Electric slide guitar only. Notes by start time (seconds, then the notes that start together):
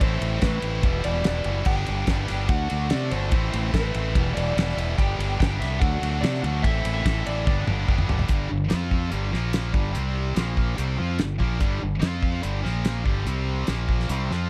0.02 C5
0.42 B4
1.05 D5
1.66 G5
2.50 F#5
2.90 D5
3.11 C5
3.74 B4
4.34 D5
4.98 G5
5.39 G5
5.60 E5
5.79 F#5
6.21 D5
6.42 F#5
6.62 E5
6.94 E5
7.26 D5